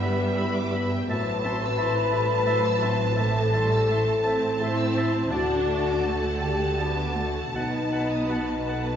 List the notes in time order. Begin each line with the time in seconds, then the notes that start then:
Already playing: G1 G2 D3 G3 B3 E4 B4 E5
0.02 B4 E5 B5
0.19 G5
0.36 E4 E5 B5
0.53 D6
0.72 B3 E5 B5
0.91 G5
1.09 A1 A2 F#3 B4 C5 E5 A5 B5
1.28 A5
1.44 C4 E5 A5 C6
1.64 E6
1.78 E3 E4 E5 A5
1.82 C6
1.99 A5
2.11 G3 A4 E5 A5
2.16 E5
2.33 A5
2.46 F#3 E4 E5 A5
2.50 C6
2.65 E6
2.81 C4 E5 A5 C6
2.99 A5
3.16 A2 E3 A4 E5 A5
3.36 A5
3.53 E3 G3 E5 A5 C6
3.70 E6
3.88 A3 E4 E5 A5 C6
4.07 A5
4.23 C4 A4 E5 A5
4.42 A5
4.59 C4 E4 E5 A5 C6
4.63 E5
4.77 E6
4.95 C4 E5 A5 C6
5.14 A5
5.30 D2 D3 D4 F#4 A4 D5 F#5 A5
5.50 F#5
5.66 A3 D5 A5
5.86 D6
6.02 A3 D4 D5 A5
6.21 F#5
6.38 G4 A4 D5 G5 A5
6.60 F#5
6.77 B3 D4 F#4 D5 F#5 A5
6.98 D6
7.14 A3 D5 A5
7.34 F#5
7.53 B1 B2 B3 D#4 B4 D#5 F#5 A5
7.72 A5
7.91 B3 F#5 A5 B5
8.09 D#6
8.28 F#4 F#5 A5 B5
8.48 A5
8.67 A4 F#5 A5
8.88 A5